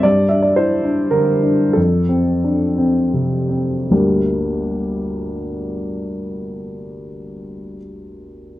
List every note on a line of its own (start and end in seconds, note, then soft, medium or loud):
0.03 1.72 G2 soft
0.03 0.30 D5 medium
0.29 0.73 D4 soft
0.29 0.43 E5 soft
0.43 0.57 D5 soft
0.56 0.85 E4 soft
0.56 1.13 C5 medium
0.84 1.31 D4 soft
1.11 1.62 D3 soft
1.11 1.75 A#4 medium
1.43 1.76 D4 soft
1.73 3.86 F2 soft
1.73 3.11 A4 soft
2.09 2.63 C4 soft
2.44 2.77 D4 soft
2.78 3.35 C4 soft
3.14 3.75 C3 soft
3.49 3.89 C4 soft
3.91 7.76 G1 soft
3.91 7.76 D2 soft
3.91 7.76 G3 soft
3.91 7.77 A#3 soft
3.91 7.76 D4 soft
3.91 7.78 G4 soft